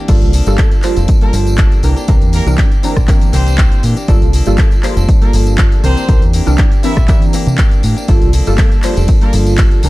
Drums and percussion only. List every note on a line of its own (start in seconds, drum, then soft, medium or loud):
0.08 kick loud
0.08 closed hi-hat medium
0.08 crash medium
0.08 tambourine medium
0.08 tambourine soft
0.21 closed hi-hat soft
0.21 tambourine soft
0.33 open hi-hat loud
0.33 tambourine medium
0.46 closed hi-hat soft
0.46 tambourine medium
0.46 tambourine soft
0.58 kick loud
0.58 clap loud
0.58 closed hi-hat medium
0.58 tambourine medium
0.58 tambourine soft
0.71 closed hi-hat soft
0.71 tambourine soft
0.83 clap medium
0.83 open hi-hat medium
0.83 tambourine medium
0.96 closed hi-hat soft
0.96 tambourine medium
0.96 tambourine soft
1.08 kick loud
1.08 closed hi-hat loud
1.08 tambourine soft
1.08 tambourine medium
1.21 closed hi-hat soft
1.21 tambourine soft
1.33 open hi-hat loud
1.33 tambourine medium
1.47 closed hi-hat soft
1.47 tambourine medium
1.47 tambourine soft
1.58 kick loud
1.58 clap loud
1.58 closed hi-hat loud
1.58 tambourine soft
1.72 closed hi-hat soft
1.72 tambourine soft
1.83 open hi-hat medium
1.83 tambourine medium
1.97 closed hi-hat soft
1.97 tambourine soft
1.97 tambourine medium
2.08 kick loud
2.08 closed hi-hat medium
2.08 tambourine medium
2.08 tambourine soft
2.21 closed hi-hat soft
2.21 tambourine soft
2.33 open hi-hat loud
2.33 tambourine medium
2.47 closed hi-hat soft
2.47 tambourine soft
2.47 tambourine medium
2.58 kick loud
2.58 clap loud
2.58 closed hi-hat medium
2.58 tambourine soft
2.72 closed hi-hat soft
2.72 tambourine soft
2.83 open hi-hat medium
2.83 tambourine medium
2.96 kick medium
2.96 cross-stick medium
2.96 closed hi-hat soft
2.96 tambourine medium
2.96 tambourine soft
3.08 kick loud
3.08 clap medium
3.08 closed hi-hat loud
3.08 tambourine soft
3.08 tambourine medium
3.21 closed hi-hat soft
3.21 tambourine soft
3.33 open hi-hat loud
3.33 tambourine medium
3.47 closed hi-hat soft
3.47 tambourine soft
3.47 tambourine medium
3.58 kick loud
3.58 clap loud
3.58 closed hi-hat loud
3.58 tambourine soft
3.72 closed hi-hat soft
3.72 tambourine soft
3.83 open hi-hat loud
3.83 tambourine medium
3.97 closed hi-hat soft
3.97 tambourine medium
3.97 tambourine soft
4.08 kick loud
4.08 closed hi-hat medium
4.08 tambourine soft
4.08 tambourine medium
4.22 closed hi-hat soft
4.22 tambourine soft
4.33 open hi-hat loud
4.33 tambourine medium
4.46 closed hi-hat soft
4.46 tambourine medium
4.47 tambourine soft
4.58 kick loud
4.58 clap loud
4.58 closed hi-hat medium
4.58 tambourine medium
4.58 tambourine soft
4.71 closed hi-hat soft
4.71 tambourine soft
4.83 clap medium
4.83 open hi-hat medium
4.83 tambourine medium
4.97 closed hi-hat soft
4.97 tambourine medium
4.97 tambourine soft
5.09 kick loud
5.09 closed hi-hat medium
5.09 tambourine medium
5.09 tambourine soft
5.21 closed hi-hat soft
5.21 tambourine soft
5.33 open hi-hat loud
5.33 tambourine medium
5.46 closed hi-hat soft
5.46 tambourine medium
5.46 tambourine soft
5.58 kick loud
5.58 clap loud
5.58 closed hi-hat loud
5.58 tambourine medium
5.58 tambourine soft
5.72 closed hi-hat soft
5.72 tambourine soft
5.84 open hi-hat loud
5.84 tambourine medium
5.97 closed hi-hat soft
5.97 tambourine medium
5.97 tambourine soft
6.09 kick loud
6.09 closed hi-hat medium
6.09 tambourine medium
6.09 tambourine soft
6.22 closed hi-hat soft
6.22 tambourine soft
6.33 open hi-hat loud
6.33 tambourine medium
6.47 closed hi-hat soft
6.47 tambourine soft
6.47 tambourine medium
6.58 kick loud
6.58 clap loud
6.58 closed hi-hat medium
6.58 tambourine soft
6.72 closed hi-hat soft
6.72 tambourine soft
6.83 open hi-hat loud
6.83 tambourine medium
6.97 kick medium
6.97 cross-stick medium
6.97 tambourine soft
6.97 tambourine medium
7.08 kick loud
7.08 clap medium
7.08 closed hi-hat medium
7.08 tambourine medium
7.08 tambourine soft
7.22 closed hi-hat soft
7.22 tambourine soft
7.33 open hi-hat loud
7.33 tambourine medium
7.47 closed hi-hat soft
7.47 tambourine soft
7.47 tambourine medium
7.58 kick loud
7.58 clap loud
7.58 closed hi-hat medium
7.58 tambourine medium
7.58 tambourine soft
7.71 closed hi-hat soft
7.71 tambourine soft
7.83 open hi-hat medium
7.83 tambourine medium
7.97 closed hi-hat soft
7.97 tambourine soft
7.97 tambourine medium
8.08 kick loud
8.08 closed hi-hat medium
8.08 ride medium
8.08 tambourine soft
8.22 closed hi-hat soft
8.22 tambourine soft
8.33 open hi-hat loud
8.33 ride medium
8.33 tambourine medium
8.47 closed hi-hat soft
8.47 tambourine medium
8.47 tambourine soft
8.58 kick loud
8.58 clap loud
8.58 closed hi-hat medium
8.58 ride medium
8.58 tambourine medium
8.58 tambourine soft
8.72 closed hi-hat soft
8.72 tambourine soft
8.83 clap medium
8.83 open hi-hat medium
8.83 ride medium
8.83 tambourine medium
8.96 closed hi-hat soft
8.96 tambourine soft
8.96 tambourine medium
9.08 kick loud
9.08 closed hi-hat medium
9.08 ride medium
9.08 tambourine medium
9.08 tambourine soft
9.21 closed hi-hat soft
9.21 tambourine soft
9.33 open hi-hat loud
9.33 ride medium
9.33 tambourine medium
9.46 closed hi-hat soft
9.46 tambourine medium
9.46 tambourine soft
9.58 kick loud
9.58 clap loud
9.58 closed hi-hat medium
9.58 ride medium
9.58 tambourine medium
9.58 tambourine soft
9.71 closed hi-hat soft
9.71 tambourine soft
9.83 open hi-hat medium
9.83 ride medium
9.83 tambourine medium